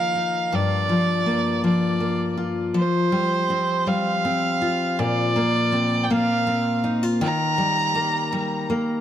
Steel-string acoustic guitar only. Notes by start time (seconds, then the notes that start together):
Already playing: D#3 F3 A#3 D#4 A#4
0.15 D#4
0.52 G2
0.89 F3
1.26 A#3
1.64 F3
2.00 A#3
2.37 F4
2.74 F3
3.12 G3
3.50 C4
3.87 G3
4.25 C4
4.62 F4
4.99 A#2
5.36 A#3
5.72 C4
6.10 A#3
6.47 C4
6.84 D#4
7.03 F4
7.21 D#3
7.58 G3
7.95 A#3
8.33 G3
8.70 A#3